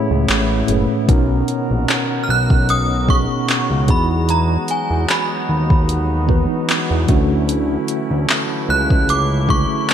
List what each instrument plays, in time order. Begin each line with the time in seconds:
Already playing: tine electric piano A2 A3 C#4 G#4 C#5, brass ensemble C#3 E3 B3 E4, synth bell B5
0.11 analog synth bass C#2
0.28 analog synth bass A1, clap, closed hi-hat
0.67 analog synth bass F#1, tine electric piano A2 A3 C#4 G#4 B4, closed hi-hat
1.07 analog synth bass B1, tine electric piano B2 B3 C#4 D#4 A#4, brass ensemble D#3 C#4 F#4 A#4, kick, closed hi-hat
1.48 closed hi-hat
1.71 analog synth bass A#1
1.88 clap, closed hi-hat
2.24 synth bell F6
2.29 analog synth bass B1, synth bell F#6
2.50 kick
2.69 synth bell D#6, closed hi-hat
3.07 tine electric piano B2 B3 C#4 D#4 G#4, synth bell C#6, kick
3.48 clap, closed hi-hat
3.71 analog synth bass C#2
3.87 analog synth bass E2, tine electric piano E3 B3 D#4 F#4 G#4, brass ensemble F#3 G#3 B3 D#4, synth bell B5, kick, closed hi-hat
4.29 synth bell A#5, closed hi-hat
4.68 synth bell G#5, closed hi-hat
4.90 analog synth bass E2
5.08 synth bell B5, clap, closed hi-hat
5.49 analog synth bass D#2
5.70 kick
5.89 closed hi-hat
6.27 tine electric piano E3 B3 D#4 F#4 B4, kick
6.69 clap, closed hi-hat
6.91 analog synth bass E2
7.07 analog synth bass D2, tine electric piano D3 A3 C#4 E4 F#4, brass ensemble E3 F#3 A3 C#4 E4, kick, closed hi-hat
7.49 closed hi-hat
7.88 closed hi-hat
8.11 analog synth bass D2
8.29 clap, closed hi-hat
8.69 analog synth bass C#2, brass ensemble C#4, synth bell F#6
8.90 kick
9.09 synth bell D6, closed hi-hat
9.47 tine electric piano D3 A3 C#4 E4 G#4, synth bell C#6, kick
9.89 clap, closed hi-hat